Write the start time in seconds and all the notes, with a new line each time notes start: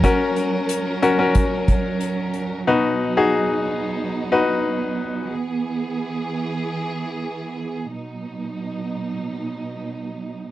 Already playing: F#3 C#4 F#4 A#4
0.04 C#4 F#4 A#4, kick, closed hi-hat
0.36 closed hi-hat
0.69 closed hi-hat
1.02 C#4 F#4 A#4, closed hi-hat
1.19 C#4 F#4 A#4
1.35 kick, closed hi-hat
1.68 kick, closed hi-hat
2.00 closed hi-hat
2.34 closed hi-hat
2.67 B2 B3 D#4 F#4 B4
3.17 D#4 F#4 G#4
4.32 D#4 F#4 B4
5.31 E3 G#4
7.94 B2 F#3 D#4